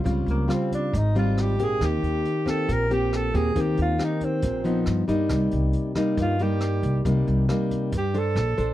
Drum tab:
HH |xxxxxxxx|xxxxxxxx|xxxxxxxx|xxxxxxxx|
SD |--r---r-|r--r--r-|--r---r-|r--r--r-|
BD |o--oo--o|o--oo--o|o--oo--o|o--oo--o|

HH |xxxxxxxx|
SD |--r---r-|
BD |o--oo--o|